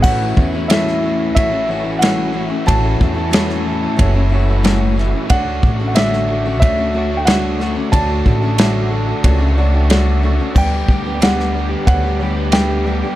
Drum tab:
CC |x---------------|----------------|----------------|----------------|
RD |----b---b---b---|b---b---b---b---|b---b---b---b---|b---b---b---b---|
SD |----oo------o---|----oo------o-o-|----oo------o-o-|----o-------o---|
BD |o-o-----o-------|o-o-----o-------|o-o-----o-------|o-o-----o-------|

CC |x---------------|
RD |----b---b---b---|
SD |----oo------o---|
BD |o-o-----o-------|